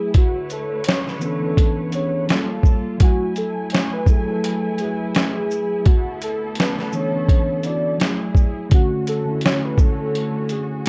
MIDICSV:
0, 0, Header, 1, 5, 480
1, 0, Start_track
1, 0, Tempo, 714286
1, 98, Time_signature, 4, 2, 24, 8
1, 7317, End_track
2, 0, Start_track
2, 0, Title_t, "Soft synth lead"
2, 0, Program_c, 0, 80
2, 0, Note_on_c, 0, 68, 81
2, 78, Note_off_c, 0, 68, 0
2, 115, Note_on_c, 0, 66, 99
2, 324, Note_off_c, 0, 66, 0
2, 352, Note_on_c, 0, 69, 79
2, 562, Note_off_c, 0, 69, 0
2, 589, Note_on_c, 0, 73, 89
2, 706, Note_off_c, 0, 73, 0
2, 729, Note_on_c, 0, 71, 73
2, 816, Note_off_c, 0, 71, 0
2, 836, Note_on_c, 0, 69, 93
2, 1280, Note_off_c, 0, 69, 0
2, 1310, Note_on_c, 0, 73, 85
2, 1520, Note_off_c, 0, 73, 0
2, 2030, Note_on_c, 0, 66, 107
2, 2240, Note_off_c, 0, 66, 0
2, 2270, Note_on_c, 0, 69, 85
2, 2481, Note_off_c, 0, 69, 0
2, 2505, Note_on_c, 0, 73, 85
2, 2623, Note_off_c, 0, 73, 0
2, 2642, Note_on_c, 0, 71, 85
2, 2732, Note_off_c, 0, 71, 0
2, 2749, Note_on_c, 0, 69, 86
2, 3231, Note_on_c, 0, 68, 82
2, 3241, Note_off_c, 0, 69, 0
2, 3946, Note_on_c, 0, 66, 96
2, 3956, Note_off_c, 0, 68, 0
2, 4158, Note_off_c, 0, 66, 0
2, 4190, Note_on_c, 0, 69, 86
2, 4401, Note_off_c, 0, 69, 0
2, 4433, Note_on_c, 0, 71, 88
2, 4548, Note_off_c, 0, 71, 0
2, 4564, Note_on_c, 0, 71, 72
2, 4653, Note_off_c, 0, 71, 0
2, 4670, Note_on_c, 0, 73, 93
2, 5149, Note_on_c, 0, 74, 83
2, 5159, Note_off_c, 0, 73, 0
2, 5360, Note_off_c, 0, 74, 0
2, 5872, Note_on_c, 0, 66, 104
2, 6081, Note_off_c, 0, 66, 0
2, 6107, Note_on_c, 0, 69, 89
2, 6319, Note_off_c, 0, 69, 0
2, 6352, Note_on_c, 0, 73, 90
2, 6467, Note_off_c, 0, 73, 0
2, 6484, Note_on_c, 0, 71, 87
2, 6573, Note_off_c, 0, 71, 0
2, 6584, Note_on_c, 0, 69, 83
2, 7068, Note_on_c, 0, 68, 78
2, 7078, Note_off_c, 0, 69, 0
2, 7317, Note_off_c, 0, 68, 0
2, 7317, End_track
3, 0, Start_track
3, 0, Title_t, "Tine electric piano"
3, 0, Program_c, 1, 4
3, 0, Control_c, 1, 64, 127
3, 0, Note_on_c, 1, 54, 63
3, 0, Note_on_c, 1, 57, 59
3, 0, Note_on_c, 1, 64, 57
3, 0, Note_on_c, 1, 68, 72
3, 0, Note_on_c, 1, 71, 75
3, 94, Note_off_c, 1, 54, 0
3, 101, Note_off_c, 1, 57, 0
3, 106, Control_c, 1, 64, 0
3, 107, Note_off_c, 1, 71, 0
3, 108, Note_off_c, 1, 64, 0
3, 115, Note_off_c, 1, 68, 0
3, 224, Control_c, 1, 64, 127
3, 803, Note_on_c, 1, 52, 83
3, 813, Note_on_c, 1, 59, 77
3, 822, Note_on_c, 1, 61, 69
3, 833, Note_on_c, 1, 62, 68
3, 845, Note_on_c, 1, 69, 80
3, 925, Note_off_c, 1, 52, 0
3, 931, Note_off_c, 1, 59, 0
3, 935, Note_off_c, 1, 61, 0
3, 941, Note_off_c, 1, 62, 0
3, 942, Note_on_c, 1, 52, 73
3, 947, Note_off_c, 1, 69, 0
3, 952, Note_on_c, 1, 59, 61
3, 963, Note_on_c, 1, 61, 67
3, 972, Note_on_c, 1, 62, 72
3, 983, Note_on_c, 1, 69, 78
3, 1246, Note_off_c, 1, 52, 0
3, 1251, Note_off_c, 1, 59, 0
3, 1256, Note_off_c, 1, 61, 0
3, 1261, Note_off_c, 1, 62, 0
3, 1266, Note_off_c, 1, 69, 0
3, 1284, Note_on_c, 1, 52, 71
3, 1293, Note_on_c, 1, 59, 65
3, 1305, Note_on_c, 1, 61, 69
3, 1313, Note_on_c, 1, 62, 65
3, 1323, Note_on_c, 1, 68, 76
3, 1531, Note_off_c, 1, 52, 0
3, 1532, Note_on_c, 1, 55, 76
3, 1535, Note_off_c, 1, 59, 0
3, 1541, Note_off_c, 1, 61, 0
3, 1546, Note_off_c, 1, 62, 0
3, 1546, Control_c, 1, 64, 0
3, 1546, Note_on_c, 1, 58, 73
3, 1551, Note_off_c, 1, 68, 0
3, 1558, Note_on_c, 1, 65, 66
3, 1571, Note_on_c, 1, 69, 93
3, 1676, Control_c, 1, 64, 127
3, 1952, Note_off_c, 1, 55, 0
3, 1960, Note_off_c, 1, 58, 0
3, 1966, Note_off_c, 1, 65, 0
3, 1972, Note_off_c, 1, 69, 0
3, 2003, Note_on_c, 1, 54, 87
3, 2017, Note_on_c, 1, 57, 76
3, 2026, Control_c, 1, 64, 0
3, 2033, Note_on_c, 1, 64, 80
3, 2046, Note_on_c, 1, 80, 103
3, 2132, Control_c, 1, 64, 127
3, 2637, Note_off_c, 1, 54, 0
3, 2644, Note_off_c, 1, 57, 0
3, 2652, Note_off_c, 1, 64, 0
3, 2658, Note_off_c, 1, 80, 0
3, 2725, Note_on_c, 1, 54, 74
3, 2738, Note_on_c, 1, 57, 64
3, 2752, Note_on_c, 1, 64, 73
3, 2764, Note_on_c, 1, 68, 79
3, 2847, Note_off_c, 1, 54, 0
3, 2853, Note_off_c, 1, 57, 0
3, 2860, Note_off_c, 1, 64, 0
3, 2860, Note_on_c, 1, 54, 75
3, 2866, Note_off_c, 1, 68, 0
3, 2874, Note_on_c, 1, 57, 65
3, 2889, Note_on_c, 1, 64, 64
3, 2903, Note_on_c, 1, 71, 84
3, 3165, Note_off_c, 1, 54, 0
3, 3172, Note_off_c, 1, 57, 0
3, 3179, Note_off_c, 1, 64, 0
3, 3186, Note_off_c, 1, 71, 0
3, 3214, Note_on_c, 1, 54, 66
3, 3228, Note_on_c, 1, 57, 56
3, 3240, Note_on_c, 1, 64, 59
3, 3253, Note_on_c, 1, 71, 72
3, 3936, Note_off_c, 1, 54, 0
3, 3943, Note_off_c, 1, 57, 0
3, 3947, Control_c, 1, 64, 0
3, 3949, Note_off_c, 1, 64, 0
3, 3956, Note_off_c, 1, 71, 0
3, 4051, Control_c, 1, 64, 127
3, 4656, Note_on_c, 1, 52, 81
3, 4666, Note_on_c, 1, 59, 74
3, 4678, Note_on_c, 1, 61, 68
3, 4688, Note_on_c, 1, 62, 69
3, 4700, Note_on_c, 1, 69, 76
3, 4772, Note_off_c, 1, 52, 0
3, 4777, Note_off_c, 1, 59, 0
3, 4783, Note_off_c, 1, 61, 0
3, 4783, Note_on_c, 1, 52, 65
3, 4788, Note_off_c, 1, 62, 0
3, 4794, Note_off_c, 1, 69, 0
3, 4794, Note_on_c, 1, 59, 64
3, 4804, Note_on_c, 1, 61, 71
3, 4815, Note_on_c, 1, 62, 69
3, 4823, Note_on_c, 1, 69, 81
3, 5086, Note_off_c, 1, 52, 0
3, 5092, Note_off_c, 1, 59, 0
3, 5097, Note_off_c, 1, 61, 0
3, 5102, Note_off_c, 1, 62, 0
3, 5106, Note_off_c, 1, 69, 0
3, 5124, Note_on_c, 1, 52, 62
3, 5133, Note_on_c, 1, 59, 63
3, 5143, Note_on_c, 1, 64, 65
3, 5156, Note_on_c, 1, 62, 60
3, 5164, Note_on_c, 1, 66, 68
3, 5364, Note_on_c, 1, 54, 70
3, 5371, Note_off_c, 1, 52, 0
3, 5376, Note_off_c, 1, 59, 0
3, 5379, Note_on_c, 1, 57, 71
3, 5381, Note_off_c, 1, 64, 0
3, 5387, Note_off_c, 1, 62, 0
3, 5388, Control_c, 1, 64, 0
3, 5391, Note_off_c, 1, 66, 0
3, 5391, Note_on_c, 1, 64, 72
3, 5406, Note_on_c, 1, 68, 85
3, 5494, Control_c, 1, 64, 127
3, 5789, Note_off_c, 1, 54, 0
3, 5796, Note_off_c, 1, 57, 0
3, 5802, Note_off_c, 1, 64, 0
3, 5810, Note_off_c, 1, 68, 0
3, 5843, Note_on_c, 1, 50, 105
3, 5858, Note_on_c, 1, 57, 76
3, 5868, Control_c, 1, 64, 0
3, 5869, Note_on_c, 1, 61, 87
3, 5883, Note_on_c, 1, 66, 103
3, 5970, Control_c, 1, 64, 127
3, 6165, Note_off_c, 1, 50, 0
3, 6173, Note_off_c, 1, 57, 0
3, 6178, Note_off_c, 1, 61, 0
3, 6185, Note_off_c, 1, 66, 0
3, 6217, Note_on_c, 1, 50, 73
3, 6232, Note_on_c, 1, 57, 68
3, 6244, Note_on_c, 1, 61, 67
3, 6256, Note_on_c, 1, 64, 83
3, 7030, Note_off_c, 1, 50, 0
3, 7037, Note_off_c, 1, 57, 0
3, 7043, Note_off_c, 1, 61, 0
3, 7049, Note_off_c, 1, 64, 0
3, 7317, End_track
4, 0, Start_track
4, 0, Title_t, "String section"
4, 0, Program_c, 2, 48
4, 0, Note_on_c, 2, 54, 75
4, 0, Note_on_c, 2, 57, 72
4, 0, Note_on_c, 2, 64, 62
4, 0, Note_on_c, 2, 80, 79
4, 79, Note_off_c, 2, 54, 0
4, 80, Note_off_c, 2, 57, 0
4, 80, Note_off_c, 2, 80, 0
4, 94, Note_on_c, 2, 50, 74
4, 95, Note_on_c, 2, 57, 61
4, 95, Note_on_c, 2, 73, 71
4, 97, Note_on_c, 2, 71, 81
4, 1510, Note_off_c, 2, 64, 0
4, 1522, Note_off_c, 2, 50, 0
4, 1522, Note_off_c, 2, 57, 0
4, 1522, Note_off_c, 2, 73, 0
4, 1523, Note_off_c, 2, 71, 0
4, 1534, Note_on_c, 2, 69, 73
4, 1537, Note_on_c, 2, 55, 69
4, 1537, Note_on_c, 2, 58, 62
4, 1538, Note_on_c, 2, 65, 62
4, 2011, Note_off_c, 2, 69, 0
4, 2013, Note_off_c, 2, 55, 0
4, 2013, Note_off_c, 2, 58, 0
4, 2013, Note_off_c, 2, 65, 0
4, 2013, Note_on_c, 2, 54, 80
4, 2013, Note_on_c, 2, 57, 67
4, 2013, Note_on_c, 2, 80, 78
4, 2014, Note_on_c, 2, 64, 67
4, 3916, Note_off_c, 2, 57, 0
4, 3916, Note_off_c, 2, 80, 0
4, 3917, Note_off_c, 2, 54, 0
4, 3938, Note_on_c, 2, 59, 72
4, 3940, Note_on_c, 2, 50, 72
4, 3940, Note_on_c, 2, 57, 73
4, 3940, Note_on_c, 2, 69, 85
4, 5349, Note_off_c, 2, 64, 0
4, 5364, Note_off_c, 2, 59, 0
4, 5365, Note_off_c, 2, 50, 0
4, 5365, Note_off_c, 2, 57, 0
4, 5365, Note_off_c, 2, 69, 0
4, 5382, Note_on_c, 2, 68, 71
4, 5385, Note_on_c, 2, 54, 64
4, 5385, Note_on_c, 2, 57, 62
4, 5387, Note_on_c, 2, 64, 62
4, 5847, Note_off_c, 2, 57, 0
4, 5856, Note_off_c, 2, 68, 0
4, 5856, Note_on_c, 2, 57, 72
4, 5856, Note_on_c, 2, 61, 68
4, 5857, Note_off_c, 2, 54, 0
4, 5857, Note_on_c, 2, 66, 78
4, 5858, Note_off_c, 2, 64, 0
4, 5858, Note_on_c, 2, 50, 73
4, 7317, Note_off_c, 2, 50, 0
4, 7317, Note_off_c, 2, 57, 0
4, 7317, Note_off_c, 2, 61, 0
4, 7317, Note_off_c, 2, 66, 0
4, 7317, End_track
5, 0, Start_track
5, 0, Title_t, "Drums"
5, 95, Note_on_c, 9, 42, 84
5, 98, Note_on_c, 9, 36, 109
5, 162, Note_off_c, 9, 42, 0
5, 165, Note_off_c, 9, 36, 0
5, 336, Note_on_c, 9, 42, 46
5, 336, Note_on_c, 9, 82, 55
5, 403, Note_off_c, 9, 42, 0
5, 403, Note_off_c, 9, 82, 0
5, 565, Note_on_c, 9, 42, 69
5, 595, Note_on_c, 9, 38, 100
5, 632, Note_off_c, 9, 42, 0
5, 663, Note_off_c, 9, 38, 0
5, 722, Note_on_c, 9, 38, 40
5, 789, Note_off_c, 9, 38, 0
5, 814, Note_on_c, 9, 82, 57
5, 881, Note_off_c, 9, 82, 0
5, 1057, Note_on_c, 9, 36, 88
5, 1062, Note_on_c, 9, 42, 79
5, 1124, Note_off_c, 9, 36, 0
5, 1129, Note_off_c, 9, 42, 0
5, 1293, Note_on_c, 9, 42, 42
5, 1293, Note_on_c, 9, 82, 47
5, 1360, Note_off_c, 9, 42, 0
5, 1360, Note_off_c, 9, 82, 0
5, 1538, Note_on_c, 9, 42, 65
5, 1548, Note_on_c, 9, 38, 106
5, 1606, Note_off_c, 9, 42, 0
5, 1615, Note_off_c, 9, 38, 0
5, 1770, Note_on_c, 9, 36, 83
5, 1782, Note_on_c, 9, 82, 42
5, 1837, Note_off_c, 9, 36, 0
5, 1849, Note_off_c, 9, 82, 0
5, 2016, Note_on_c, 9, 42, 81
5, 2019, Note_on_c, 9, 36, 112
5, 2083, Note_off_c, 9, 42, 0
5, 2086, Note_off_c, 9, 36, 0
5, 2258, Note_on_c, 9, 42, 49
5, 2258, Note_on_c, 9, 82, 47
5, 2325, Note_off_c, 9, 42, 0
5, 2325, Note_off_c, 9, 82, 0
5, 2486, Note_on_c, 9, 42, 74
5, 2517, Note_on_c, 9, 38, 104
5, 2554, Note_off_c, 9, 42, 0
5, 2584, Note_off_c, 9, 38, 0
5, 2731, Note_on_c, 9, 36, 85
5, 2734, Note_on_c, 9, 82, 50
5, 2798, Note_off_c, 9, 36, 0
5, 2801, Note_off_c, 9, 82, 0
5, 2984, Note_on_c, 9, 42, 76
5, 3051, Note_off_c, 9, 42, 0
5, 3214, Note_on_c, 9, 42, 47
5, 3214, Note_on_c, 9, 82, 41
5, 3281, Note_off_c, 9, 42, 0
5, 3281, Note_off_c, 9, 82, 0
5, 3459, Note_on_c, 9, 42, 72
5, 3468, Note_on_c, 9, 38, 112
5, 3526, Note_off_c, 9, 42, 0
5, 3536, Note_off_c, 9, 38, 0
5, 3702, Note_on_c, 9, 82, 50
5, 3769, Note_off_c, 9, 82, 0
5, 3935, Note_on_c, 9, 42, 78
5, 3938, Note_on_c, 9, 36, 114
5, 4002, Note_off_c, 9, 42, 0
5, 4005, Note_off_c, 9, 36, 0
5, 4177, Note_on_c, 9, 42, 51
5, 4177, Note_on_c, 9, 82, 49
5, 4245, Note_off_c, 9, 42, 0
5, 4245, Note_off_c, 9, 82, 0
5, 4404, Note_on_c, 9, 42, 72
5, 4434, Note_on_c, 9, 38, 101
5, 4471, Note_off_c, 9, 42, 0
5, 4502, Note_off_c, 9, 38, 0
5, 4560, Note_on_c, 9, 38, 41
5, 4628, Note_off_c, 9, 38, 0
5, 4653, Note_on_c, 9, 82, 51
5, 4720, Note_off_c, 9, 82, 0
5, 4896, Note_on_c, 9, 36, 87
5, 4900, Note_on_c, 9, 42, 72
5, 4963, Note_off_c, 9, 36, 0
5, 4968, Note_off_c, 9, 42, 0
5, 5130, Note_on_c, 9, 42, 45
5, 5130, Note_on_c, 9, 82, 44
5, 5197, Note_off_c, 9, 42, 0
5, 5197, Note_off_c, 9, 82, 0
5, 5375, Note_on_c, 9, 42, 64
5, 5385, Note_on_c, 9, 38, 102
5, 5442, Note_off_c, 9, 42, 0
5, 5452, Note_off_c, 9, 38, 0
5, 5609, Note_on_c, 9, 36, 82
5, 5621, Note_on_c, 9, 82, 45
5, 5676, Note_off_c, 9, 36, 0
5, 5688, Note_off_c, 9, 82, 0
5, 5854, Note_on_c, 9, 42, 86
5, 5857, Note_on_c, 9, 36, 113
5, 5921, Note_off_c, 9, 42, 0
5, 5925, Note_off_c, 9, 36, 0
5, 6097, Note_on_c, 9, 42, 50
5, 6097, Note_on_c, 9, 82, 52
5, 6164, Note_off_c, 9, 42, 0
5, 6164, Note_off_c, 9, 82, 0
5, 6325, Note_on_c, 9, 42, 67
5, 6355, Note_on_c, 9, 38, 111
5, 6392, Note_off_c, 9, 42, 0
5, 6422, Note_off_c, 9, 38, 0
5, 6570, Note_on_c, 9, 36, 92
5, 6573, Note_on_c, 9, 82, 53
5, 6637, Note_off_c, 9, 36, 0
5, 6640, Note_off_c, 9, 82, 0
5, 6822, Note_on_c, 9, 42, 77
5, 6889, Note_off_c, 9, 42, 0
5, 7051, Note_on_c, 9, 42, 47
5, 7051, Note_on_c, 9, 82, 46
5, 7118, Note_off_c, 9, 42, 0
5, 7118, Note_off_c, 9, 82, 0
5, 7296, Note_on_c, 9, 42, 69
5, 7317, Note_off_c, 9, 42, 0
5, 7317, End_track
0, 0, End_of_file